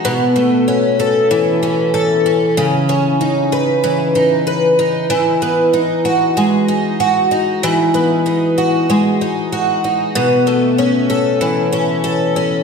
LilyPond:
\new Staff \with { instrumentName = "Twelve-string acoustic guitar" } { \time 4/4 \key e \major \tempo 4 = 95 b,8 a8 cis'8 a'8 e8 cis'8 a'8 cis'8 | cis8 cis'8 dis'8 b'8 e8 dis'8 b'8 dis'8 | e8 b8 dis'8 fis'8 gis8 dis'8 fis'8 dis'8 | e8 b8 dis'8 fis'8 gis8 dis'8 fis'8 dis'8 |
b,8 a8 cis'8 a'8 e8 cis'8 a'8 cis'8 | }